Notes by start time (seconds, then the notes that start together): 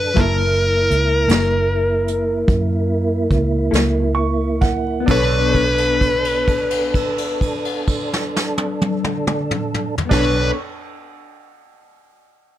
Already playing: F#2 D4 A4 B4 C#6
0.14 F#1 F#3 A#3 E4 A4 A#4 A5, kick, closed hi-hat
0.19 E4 A#4
0.91 C#2, closed hi-hat
1.27 F#1 F#3 A#3 E4 A4, snare, closed hi-hat
2.08 closed hi-hat
2.48 F#2, kick, closed hi-hat
3.31 C#2, kick, closed hi-hat
3.71 C#2 F#3 A#3 E4 A4, closed hi-hat
3.75 snare
4.15 C#6
4.61 F#5, kick, snare, closed hi-hat
5.00 B3
5.06 B1 D4 A4, kick, crash
5.11 A4 B4 C#5
5.17 C#5
5.55 kick, crash
5.78 crash
6.01 kick, crash
6.25 crash
6.48 kick, crash
6.71 crash
6.94 kick, crash
7.18 crash
7.41 kick, crash
7.65 crash
7.87 kick, crash
8.13 snare
8.36 snare
8.58 high tom
8.82 high tom
9.04 mid tom
9.27 mid tom
9.51 mid tom
9.74 mid tom
9.98 floor tom
10.05 B3
10.09 B1 D4 A4 B4 C#5, kick, snare, crash
10.13 A4 C#5
10.22 C#5